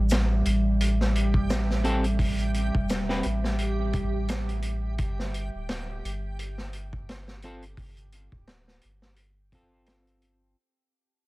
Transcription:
0.00 0.42 A1 loud
0.00 10.59 G3 medium
0.00 10.58 G4 medium
0.00 10.58 E5 medium
0.10 snare loud
0.10 closed hi-hat medium
0.10 shaker medium
0.45 2.70 A1 medium
0.45 closed hi-hat medium
0.80 closed hi-hat medium
1.01 snare soft
1.15 closed hi-hat medium
1.34 kick medium
1.50 snare loud
1.50 closed hi-hat medium
1.50 shaker medium
1.70 snare soft
1.84 2.04 C4 medium
1.84 2.04 G4 medium
1.84 2.04 A4 loud
1.84 closed hi-hat medium
2.04 closed hi-hat soft
2.19 kick medium
2.19 open hi-hat medium
2.38 closed hi-hat soft
2.54 closed hi-hat medium
2.75 3.22 E1 medium
2.75 kick medium
2.89 snare loud
2.89 closed hi-hat medium
2.89 shaker medium
3.09 3.24 C4 medium
3.09 3.25 G4 medium
3.09 3.25 B4 loud
3.09 snare soft
3.23 5.00 A1 medium
3.23 closed hi-hat medium
3.44 snare soft
3.59 closed hi-hat medium
3.93 kick medium
3.93 closed hi-hat medium
4.28 snare loud
4.28 closed hi-hat medium
4.28 shaker medium
4.49 closed hi-hat soft
4.62 closed hi-hat medium
4.98 5.49 G1 medium
4.98 kick loud
4.98 closed hi-hat medium
5.19 snare soft
5.34 closed hi-hat medium
5.54 6.01 D1 medium
5.69 snare medium
5.69 closed hi-hat medium
6.04 8.29 G1 medium
6.04 closed hi-hat medium
6.39 closed hi-hat medium
6.58 snare soft
6.73 closed hi-hat medium
6.93 kick medium
7.09 snare loud
7.09 closed hi-hat medium
7.28 snare soft
7.42 7.63 C4 medium
7.42 7.63 F4 medium
7.42 7.63 A4 loud
7.42 closed hi-hat medium
7.62 closed hi-hat soft
7.77 kick loud
7.77 open hi-hat medium
7.97 closed hi-hat soft
8.12 closed hi-hat medium
8.32 8.80 D1 medium
8.32 kick medium
8.47 snare loud
8.47 closed hi-hat medium
8.68 snare soft
8.81 10.54 G1 medium
8.81 closed hi-hat medium
9.02 snare soft
9.16 closed hi-hat medium
9.52 10.55 C4 medium
9.52 10.56 F4 medium
9.52 10.56 A4 medium
9.52 kick medium
9.52 closed hi-hat medium
9.86 snare medium
9.86 closed hi-hat medium
10.07 closed hi-hat soft
10.22 closed hi-hat medium

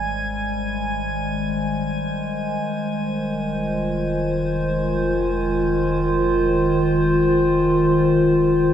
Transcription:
0.00 2.59 G#1 medium
0.00 8.74 D#3 medium
0.00 4.52 G3 medium
0.00 8.74 G#3 medium
0.00 8.74 C5 medium
0.00 8.74 G#5 medium
2.63 8.74 F1 medium
3.42 8.74 F4 medium

